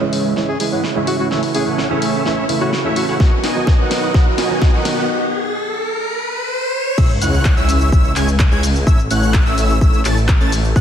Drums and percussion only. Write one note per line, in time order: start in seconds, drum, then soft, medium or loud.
0.13 open hi-hat loud
0.36 snare soft
0.60 open hi-hat loud
0.84 snare medium
1.07 open hi-hat loud
1.31 snare medium
1.43 open hi-hat medium
1.55 open hi-hat loud
1.78 snare medium
2.02 open hi-hat loud
2.26 snare medium
2.49 open hi-hat loud
2.73 snare medium
2.96 open hi-hat loud
3.20 kick loud
3.20 snare medium
3.44 snare medium
3.44 open hi-hat loud
3.67 kick loud
3.67 snare medium
3.91 snare medium
3.91 open hi-hat loud
4.14 kick loud
4.14 snare medium
4.38 snare medium
4.38 open hi-hat loud
4.62 kick loud
4.62 snare medium
4.85 snare medium
4.85 open hi-hat loud
6.98 kick loud
6.98 crash loud
6.98 shaker soft
7.10 shaker soft
7.22 open hi-hat loud
7.22 shaker medium
7.34 shaker soft
7.45 kick loud
7.45 clap loud
7.45 shaker soft
7.57 shaker soft
7.69 open hi-hat loud
7.69 shaker medium
7.81 shaker soft
7.92 kick loud
7.92 shaker soft
8.05 shaker soft
8.16 clap medium
8.16 open hi-hat loud
8.16 shaker medium
8.28 shaker soft
8.39 kick loud
8.39 clap loud
8.39 shaker soft
8.52 shaker soft
8.63 open hi-hat loud
8.63 shaker medium
8.76 shaker soft
8.87 kick loud
8.87 shaker soft
8.99 shaker soft
9.11 open hi-hat loud
9.11 shaker medium
9.23 shaker soft
9.34 kick loud
9.34 clap loud
9.34 shaker soft
9.46 shaker soft
9.58 open hi-hat loud
9.58 shaker medium
9.70 shaker soft
9.81 kick loud
9.81 shaker soft
9.94 shaker soft
10.05 clap medium
10.05 open hi-hat loud
10.05 shaker medium
10.17 shaker soft
10.28 kick loud
10.28 clap loud
10.28 shaker soft
10.41 shaker soft
10.52 open hi-hat loud
10.52 shaker medium
10.65 shaker soft
10.76 kick loud
10.76 shaker soft